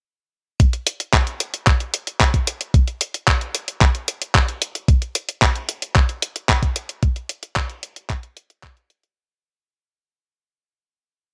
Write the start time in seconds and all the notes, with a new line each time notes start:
0.60 kick, closed hi-hat
0.73 closed hi-hat
0.87 closed hi-hat
1.00 closed hi-hat
1.13 kick, clap, closed hi-hat
1.27 closed hi-hat
1.40 closed hi-hat
1.54 closed hi-hat
1.67 kick, clap, closed hi-hat
1.80 closed hi-hat
1.94 closed hi-hat
2.07 closed hi-hat
2.21 kick, clap, closed hi-hat
2.34 kick, closed hi-hat
2.47 closed hi-hat
2.61 closed hi-hat
2.74 kick, closed hi-hat
2.88 closed hi-hat
3.01 closed hi-hat
3.14 closed hi-hat
3.28 kick, clap, closed hi-hat
3.41 closed hi-hat
3.55 closed hi-hat
3.68 closed hi-hat
3.81 kick, clap, closed hi-hat
3.95 closed hi-hat
4.08 closed hi-hat
4.22 closed hi-hat
4.35 kick, clap, closed hi-hat
4.48 closed hi-hat
4.62 closed hi-hat
4.75 closed hi-hat
4.88 kick, closed hi-hat
5.02 closed hi-hat
5.15 closed hi-hat
5.29 closed hi-hat
5.42 kick, clap, closed hi-hat
5.55 closed hi-hat
5.69 closed hi-hat
5.82 closed hi-hat
5.96 kick, clap, closed hi-hat
6.09 closed hi-hat
6.22 closed hi-hat
6.36 closed hi-hat
6.49 kick, clap, closed hi-hat
6.63 kick, closed hi-hat
6.76 closed hi-hat
6.89 closed hi-hat
7.03 kick, closed hi-hat
7.16 closed hi-hat
7.29 closed hi-hat
7.43 closed hi-hat
7.56 kick, clap, closed hi-hat
7.70 closed hi-hat
7.83 closed hi-hat
7.96 closed hi-hat
8.10 kick, clap, closed hi-hat
8.23 closed hi-hat
8.37 closed hi-hat
8.50 closed hi-hat
8.63 kick, clap, closed hi-hat
8.77 closed hi-hat
8.90 closed hi-hat
9.03 closed hi-hat